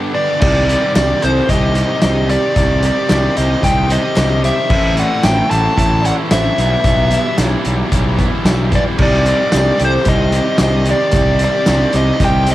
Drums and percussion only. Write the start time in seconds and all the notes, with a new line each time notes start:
0.41 kick, crash
0.69 closed hi-hat
0.96 snare, clap, closed hi-hat, tambourine
1.22 closed hi-hat
1.49 kick, closed hi-hat
1.75 closed hi-hat
2.02 snare, clap, closed hi-hat, tambourine
2.29 closed hi-hat
2.56 kick, closed hi-hat
2.83 closed hi-hat
3.09 snare, clap, closed hi-hat, tambourine
3.37 closed hi-hat
3.63 kick, closed hi-hat
3.90 closed hi-hat
4.16 snare, clap, closed hi-hat, tambourine
4.44 closed hi-hat
4.70 kick, crash
4.97 closed hi-hat
5.23 snare, clap, closed hi-hat, tambourine
5.51 closed hi-hat
5.78 kick, closed hi-hat
6.05 closed hi-hat
6.31 snare, clap, closed hi-hat, tambourine
6.58 closed hi-hat
6.84 kick, closed hi-hat
7.11 closed hi-hat
7.38 snare, clap, closed hi-hat, tambourine
7.65 closed hi-hat
7.92 kick, clap, closed hi-hat
8.19 kick, closed hi-hat
8.45 snare, clap, closed hi-hat, tambourine
8.72 kick, closed hi-hat
8.98 kick, crash
9.13 snare
9.26 closed hi-hat
9.52 snare, clap, closed hi-hat, tambourine
9.80 closed hi-hat
10.05 kick, closed hi-hat
10.32 closed hi-hat
10.58 snare, clap, closed hi-hat, tambourine
10.85 closed hi-hat
11.12 kick, closed hi-hat
11.39 closed hi-hat
11.66 snare, clap, closed hi-hat, tambourine
11.93 closed hi-hat
12.20 kick, closed hi-hat
12.46 closed hi-hat